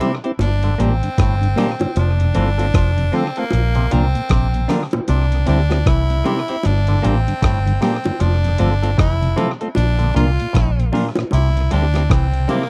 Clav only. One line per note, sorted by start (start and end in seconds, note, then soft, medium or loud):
0.01 0.18 C3 medium
0.64 0.75 D3 medium
0.80 0.96 A#2 medium
1.18 1.35 A2 medium
1.58 1.74 A#2 medium
1.97 2.13 F3 medium
2.36 2.52 E3 medium
2.74 2.91 F3 medium
3.13 3.30 D3 medium
3.76 3.87 C3 medium
3.91 4.08 A#2 medium
4.31 4.47 C3 medium
4.69 4.86 D3 medium
5.09 5.26 C3 medium
5.47 5.64 D3 medium
5.87 6.04 E3 medium
6.26 6.42 C3 medium
6.88 6.99 D3 medium
7.03 7.20 A#2 medium
7.42 7.59 A2 medium
7.81 7.98 A#2 medium
8.20 8.37 F3 medium
8.59 8.76 D3 medium
8.98 9.15 E3 medium
9.36 9.54 C3 medium
9.99 10.10 D3 medium
10.15 10.32 A#2 medium
10.53 10.71 A2 medium
10.93 11.10 A#2 medium
11.32 11.49 C3 medium
11.71 11.88 D3 medium
12.10 12.27 E3 medium
12.49 12.66 C3 medium